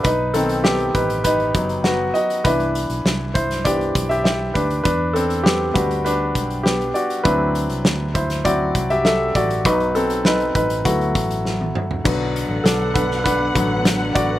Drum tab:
CC |----------------|----------------|----------------|----------------|
HH |x-xx-xxxxxxx--xx|xxxx--xxxxxx--xx|x-xx--xxx-xx-xxx|x-xx--xxx-xx--xx|
SD |----o-------o---|----o--o----o---|----o-------o---|----o--o----o---|
T1 |----------------|----------------|----------------|----------------|
T2 |----------------|----------------|----------------|----------------|
FT |----------------|----------------|----------------|----------------|
BD |o-----o-o-o-----|o-----o-o-o---o-|o-----o---o-----|o-----o-o-o---o-|

CC |----------------|x---------------|
HH |xxxx-xxxxxxx----|--x-x-x-x-x-x-x-|
SD |----o-------o---|----o--o----o---|
T1 |-------------o--|----------------|
T2 |--------------o-|----------------|
FT |---------------o|----------------|
BD |o-----o-o-o-----|o-----o-o-o---o-|